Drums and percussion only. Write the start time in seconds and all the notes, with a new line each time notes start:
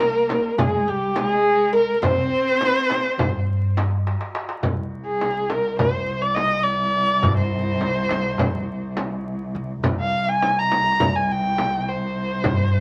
0.00 darbuka tek, frame drum
0.29 darbuka tek, frame drum
0.58 darbuka dum, frame drum
1.16 darbuka tek, frame drum
2.03 frame drum, darbuka dum
2.31 darbuka ka
2.61 darbuka tek, frame drum
2.90 darbuka tek, frame drum
3.19 frame drum, darbuka dum
3.77 darbuka tek, frame drum
4.07 darbuka tek
4.21 darbuka ka
4.35 darbuka tek
4.49 darbuka ka
4.63 darbuka dum, frame drum
5.21 darbuka tek, frame drum
5.50 darbuka tek, frame drum
5.79 frame drum, darbuka dum
6.36 darbuka tek, frame drum
7.23 darbuka dum, frame drum
7.81 darbuka tek, frame drum
8.09 darbuka tek, frame drum
8.38 darbuka dum, frame drum
8.97 darbuka tek, frame drum
9.84 darbuka dum, frame drum
10.42 darbuka tek, frame drum
10.71 darbuka tek, frame drum
11.00 darbuka dum, frame drum
11.58 darbuka tek, frame drum
12.44 frame drum, darbuka dum